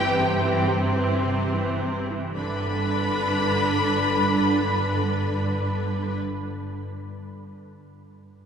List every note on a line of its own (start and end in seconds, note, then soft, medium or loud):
0.00 2.05 G1 medium
0.00 2.05 G2 medium
0.00 0.19 E3 loud
0.00 2.05 C4 loud
0.00 0.67 G4 loud
0.00 0.69 G5 loud
0.21 0.45 C3 medium
0.44 0.70 E3 loud
0.70 0.97 C3 medium
0.96 1.24 E3 medium
1.23 1.52 C3 medium
1.52 1.81 E3 medium
1.82 2.10 C3 medium
2.10 2.36 E3 medium
2.36 6.18 G1 medium
2.36 6.17 G2 medium
2.36 6.17 D3 medium
2.36 6.17 D4 medium
2.36 6.17 B4 medium
2.36 6.17 B5 loud